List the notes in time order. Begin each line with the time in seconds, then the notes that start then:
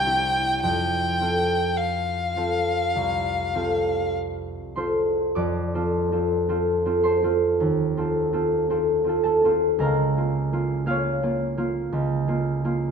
Already playing: C2 G5
0.05 C4 E4 G4
0.63 F2 G5
1.20 C4 F4 A4
1.78 F5
2.36 C4 F4 A4
2.95 C2
3.55 C4 F4 A4
4.76 C4 F4 A4 C5 C6
5.35 F2 D5 D6
5.74 C4 F4 A4
6.12 C4 F4 A4
6.49 C4 F4 A4
6.86 C4 F4 A4
7.03 C5 A5 C6
7.23 C4 F4 A4
7.60 D#2
7.97 C4 F4 A4
8.33 C4 F4 A4
8.70 C4 F4 A4
9.04 C4 F4
9.09 A4
9.23 A4 A5
9.44 C4 F4 A4
9.79 C#2 A#4 A#5
9.84 F5
10.17 A#3 F4
10.53 A#3 F4
10.86 A#3 F4 F5
10.90 C#5
11.23 A#3 F4
11.57 A#3 F4
11.92 C#2
12.28 A#3 F4
12.64 A#3 F4